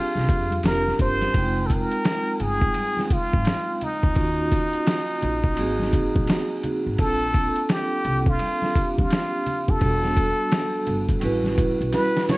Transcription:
Already playing: C4 D4 F4 G4 G#4
0.15 C2, snare, high conga, shaker
0.29 F2, kick, ride, low conga, shaker
0.51 ride, high conga, shaker
0.63 F1 C4 D4 F4 G4 A#4, snare, hi-hat pedal, ride, shaker
0.87 snare, shaker
0.99 G1 C5, kick, ride, low conga, shaker
1.21 snare, ride, high conga, shaker
1.32 F1 G#3 C4 D#4 F4, kick, ride, shaker
1.36 G5
1.56 shaker
1.66 A4, kick, shaker
1.70 A#4, ride
1.91 ride, shaker
2.04 snare, hi-hat pedal, ride, shaker
2.27 shaker
2.40 G1 G#4, ride, low conga, shaker
2.62 kick, shaker
2.74 ride, high conga, shaker
2.97 snare, high conga, shaker
3.10 F4, kick, ride, low conga, shaker
3.33 G#1, kick, high conga, shaker
3.45 snare, hi-hat pedal, ride, shaker
3.69 shaker
3.81 D#4, ride, low conga, shaker
4.03 D2, kick, shaker
4.14 D#2 A#3 C#4 D#4 F4, kick, ride, shaker
4.19 F#4
4.39 shaker
4.51 kick, ride, shaker
4.73 ride, shaker
4.86 snare, hi-hat pedal, ride, shaker
5.09 shaker
5.22 A#1, ride, low conga, shaker
5.44 kick, shaker
5.55 G#1 A#3 C4 D#4 F#4, ride, high conga, shaker
5.60 G#4
5.79 snare, high conga, shaker
5.93 kick, ride, low conga, shaker
6.15 A#1, kick, high conga, shaker
6.27 snare, hi-hat pedal, ride, shaker
6.51 shaker
6.63 ride, low conga, shaker
6.86 G#1, shaker
6.96 A#1 A#3 C4 D4 F4 A4, kick, ride, shaker
7.01 A4
7.21 shaker
7.34 kick, ride, shaker
7.56 ride, shaker
7.69 G4, snare, hi-hat pedal, ride, shaker
7.92 shaker
8.05 C2, ride, low conga, shaker
8.26 F4, kick, shaker
8.39 ride, high conga, shaker
8.62 snare, high conga, shaker
8.74 A#3 C4 D4 F4 G4, kick, ride, low conga, shaker
8.98 D2 F4, kick, high conga, shaker
9.10 snare, hi-hat pedal, ride, shaker
9.33 shaker
9.46 ride, low conga, shaker
9.68 F1 A4, kick, shaker
9.79 E1 G3 B3 D4 F#4, kick, ride, shaker
9.84 A4
10.03 snare, shaker
10.16 kick, ride, shaker
10.39 shaker
10.51 snare, hi-hat pedal, ride, shaker
10.74 shaker
10.87 G1, ride, low conga, shaker
11.09 kick, ride, shaker
11.20 A1 G3 C#4 E4 F#4, ride, high conga, shaker
11.24 B4
11.44 snare, high conga, shaker
11.57 kick, ride, low conga, shaker
11.80 B1, ride, high conga, shaker
11.93 B4, snare, hi-hat pedal, ride, shaker
12.15 snare, shaker
12.29 C#5, snare, ride, low conga, shaker

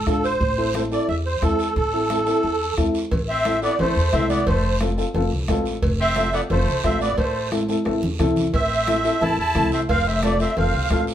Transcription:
0.06 A1 D4 F4 A4, bombo low, bombo rim, high conga, short guiro
0.24 C5, short guiro
0.40 A1, bombo low, high conga, long guiro
0.57 C4 E4 A4
0.74 C4 E4 A4 C5, bombo rim, high conga, short guiro
0.91 C4 E4 A4 D5, short guiro
1.08 E2 E5, high conga, long guiro
1.26 C5
1.42 E2 C4 E4 A4, bombo low, bombo rim, high conga, short guiro
1.59 short guiro
1.76 A1 A4, bombo low, long guiro
1.93 C4 E4 A4
2.09 C4 E4 A4, bombo rim, high conga, short guiro
2.26 C4 E4 A4, short guiro
2.43 E2, high conga, long guiro
2.77 E2 C4 E4 A4, bombo low, bombo rim, high conga, short guiro
2.95 short guiro
3.11 A1, bombo low, cowbell, high conga, low conga, long guiro
3.29 C4 E5
3.45 C4 E4 A4, bombo rim, cowbell, high conga, short guiro
3.62 B3 C4 E4 A4 D5, short guiro
3.79 A1 A3 C4 E4 A4 C5, cowbell, high conga, low conga, long guiro
3.96 E2
4.13 C2 C4 E4 A4 E5, bombo low, bombo rim, cowbell, high conga, low timbale, short guiro
4.29 B3 D5, high conga, short guiro
4.47 F1 A3 C5, bombo low, cowbell, high conga, low conga, long guiro
4.80 C4 F4 A4, bombo rim, cowbell, high conga, short guiro
4.97 C4 F4 A4, short guiro
5.14 F1 C4 F4 A4, cowbell, high conga, low conga, long guiro
5.31 C2
5.48 A1 C4 F4 A4, bombo low, bombo rim, cowbell, high conga, low timbale, short guiro
5.65 high conga, short guiro
5.82 F1, bombo low, cowbell, high conga, long guiro
6.00 C4 E5
6.16 C4 F4 A4, bombo rim, cowbell, high conga, short guiro
6.33 B3 C4 F4 A4 D5, short guiro
6.50 F1 A3 C4 F4 A4 C5, cowbell, high conga, low conga, long guiro
6.67 C2
6.84 A1 C4 F4 A4 E5, bombo low, bombo rim, cowbell, high conga, short guiro
7.01 B3 D5, short guiro
7.18 A1 A3 C5, bombo low, cowbell, high conga, long guiro
7.51 C4 E4 A4, bombo rim, cowbell, high conga, short guiro
7.68 C4 E4 A4, high conga, short guiro
7.85 A1 C4 E4 A4, bombo rim, cowbell, long guiro
8.03 E2, low conga
8.19 C2 C4 E4 A4, bombo low, bombo rim, cowbell, low conga, short guiro
8.36 low conga, short guiro
8.54 A1 C4 E5, bombo low, cowbell, long guiro
8.87 C4 E4 A4, bombo rim, cowbell, high conga, short guiro
9.04 C4 E4 A4, short guiro
9.21 A1 C4 E4 A4 A5, cowbell, high conga, low conga, long guiro
9.38 E2 E4 A5
9.54 C2 C4 E4 A4, bombo low, bombo rim, cowbell, high conga, low conga, short guiro
9.72 C4 E5, high conga, short guiro
9.89 F1 C4 F5, bombo low, cowbell, high conga, long guiro
10.06 C4 E5
10.22 A3 C4 F4 A4 D5, bombo rim, cowbell, high conga, short guiro
10.39 C4 F4 A4 E5, short guiro
10.57 F1 C4 F4 A4 F5, cowbell, high conga, low conga, long guiro
10.74 C2
10.90 A1 C4 F4 A4, bombo low, bombo rim, cowbell, high conga, low timbale, short guiro
11.07 short guiro

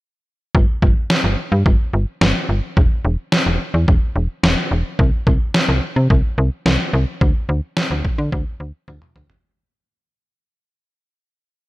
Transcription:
0.55 G1, kick
0.82 G1, kick
1.10 snare
1.24 G1
1.52 G2
1.66 G1, kick
1.93 G1
2.21 G1, snare
2.49 G1
2.77 E1, kick
3.05 E1
3.32 snare
3.46 E1
3.74 E2
3.88 E1, kick
4.16 E1
4.43 E1, snare
4.71 E1
4.99 C2, kick
5.27 C2, kick
5.54 snare
5.69 C2
5.96 C3
6.10 C2, kick
6.38 C2
6.66 C2, snare
6.93 C2
7.21 D2, kick
7.49 D2
7.77 snare
7.91 D2
8.05 kick
8.18 D3
8.32 D2, kick
8.60 D2
8.88 D2, high tom
9.02 mid tom
9.16 D2, mid tom
9.30 floor tom

